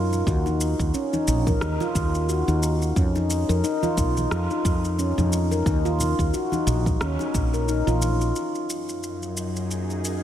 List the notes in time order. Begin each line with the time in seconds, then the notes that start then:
Already playing: F#2
0.13 muted conga, shaker
0.27 D#2 F#4, kick, shaker
0.46 D#4, muted conga, shaker
0.61 shaker
0.79 D#2, kick, shaker
0.94 C#4, shaker
1.13 D#4, high conga, shaker
1.28 A#1, low conga, shaker
1.47 A#4, kick, high conga, shaker
1.61 D#2 D#4, cross-stick, shaker
1.80 F4, muted conga, shaker
1.95 D#2, kick, shaker
2.15 shaker
2.29 F#4, shaker
2.47 D#2 D#4, muted conga, high conga, shaker
2.63 shaker
2.82 shaker
2.96 F2 C#4, kick, shaker
3.15 D#4, muted conga, shaker
3.30 muted conga, shaker
3.49 F2 A#4, shaker
3.64 D#4, shaker
3.83 F4, high conga, shaker
3.97 B1, kick, shaker
4.17 high conga, shaker
4.31 F2, cross-stick, shaker
4.50 D#4, shaker
4.65 F2, kick, shaker
4.85 shaker
4.99 C#4, shaker
5.17 F2 D#4, high conga, low conga, shaker
5.33 shaker
5.51 A#4, muted conga, shaker
5.66 D#2 D#4, kick, shaker
5.85 F4, muted conga, shaker
5.99 muted conga, low conga, shaker
6.19 D#2, kick, shaker
6.34 F#4, shaker
6.52 D#4, high conga, shaker
6.67 A#1, low conga, shaker
6.86 kick, high conga, shaker
7.01 D#2 C#4, cross-stick, shaker
7.19 D#4, muted conga, shaker
7.34 A#1, kick, shaker
7.54 A#4, shaker
7.68 D#4, shaker
7.87 A#1 F4, muted conga, high conga, shaker
8.01 high conga, shaker
8.21 shaker
8.35 F#2, shaker
8.55 shaker
8.70 shaker
8.87 D#4, shaker
9.03 shaker
9.12 A#3
9.23 shaker
9.27 G#4
9.37 shaker
9.56 C#5, shaker
9.71 shaker
9.90 shaker
10.05 shaker